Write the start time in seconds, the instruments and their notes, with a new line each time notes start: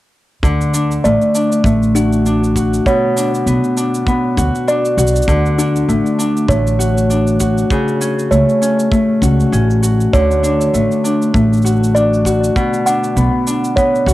0.43 upright bass D2, harp D3, kick, cabasa
0.61 cabasa
0.74 harp D4, cabasa
0.91 cabasa
1.04 upright bass A1, harp A3, music box D5, cabasa
1.22 cabasa
1.35 harp D4, cabasa
1.52 cabasa
1.64 upright bass A1, harp A3, kick, cabasa
1.83 cabasa
1.95 music box D4, harp F#4, cabasa
2.13 cabasa
2.26 harp D4, cabasa
2.44 cabasa
2.56 harp F#4, kick, cabasa
2.74 cabasa
2.86 harp B2, music box C#5, kick, cabasa
3.16 harp D4, cabasa
3.35 cabasa
3.46 upright bass B1, harp B3, cabasa
3.64 cabasa
3.77 harp D4, cabasa
3.95 cabasa
4.07 harp B3, kick, cabasa
4.37 upright bass D2, harp F#4, kick, cabasa
4.55 cabasa
4.67 harp D4, music box D5, cabasa
4.85 cabasa
4.97 upright bass B1, harp F#4, cabasa
5.07 cabasa
5.16 cabasa
5.22 cabasa
5.28 upright bass D2, harp D3, kick, cabasa
5.46 cabasa
5.58 harp D4, music box D4, cabasa
5.76 cabasa
5.88 upright bass A1, harp A3, cabasa
6.06 cabasa
6.19 harp D4, cabasa
6.37 cabasa
6.48 upright bass A1, harp A3, music box C#5, kick, cabasa
6.67 cabasa
6.79 harp F#4, cabasa
6.98 cabasa
7.10 harp D4, cabasa
7.27 cabasa
7.40 harp F#4, kick, cabasa
7.58 cabasa
7.70 harp C#3, kick, cabasa
7.88 cabasa
8.01 harp C#4, cabasa
8.19 cabasa
8.31 upright bass C#2, harp A3, music box C#5, cabasa
8.49 cabasa
8.61 harp C#4, cabasa
8.79 cabasa
8.91 harp A3, kick, cabasa
9.22 upright bass C#2, music box C#4, harp F#4, kick, cabasa
9.40 cabasa
9.52 upright bass A1, harp C#4, cabasa
9.70 cabasa
9.82 harp F#4, cabasa
10.01 cabasa
10.13 upright bass D2, harp D3, music box C#5, kick, cabasa
10.31 cabasa
10.43 harp D4, cabasa
10.61 cabasa
10.73 upright bass A1, harp A3, cabasa
10.92 cabasa
11.04 harp D4, cabasa
11.22 cabasa
11.34 upright bass A1, harp A3, kick, cabasa
11.53 cabasa
11.57 cabasa
11.62 harp F#4, cabasa
11.66 cabasa
11.76 cabasa
11.84 cabasa
11.95 harp D4, music box D5, cabasa
12.14 cabasa
12.25 harp F#4, kick, cabasa
12.44 cabasa
12.56 harp B2, kick, cabasa
12.74 cabasa
12.86 harp D4, music box F#5, cabasa
13.04 cabasa
13.16 upright bass B1, harp B3, cabasa
13.47 harp D4, cabasa
13.64 cabasa
13.76 harp B3, music box C#5, kick, cabasa
13.95 cabasa
14.06 upright bass D2, harp F#4, kick, cabasa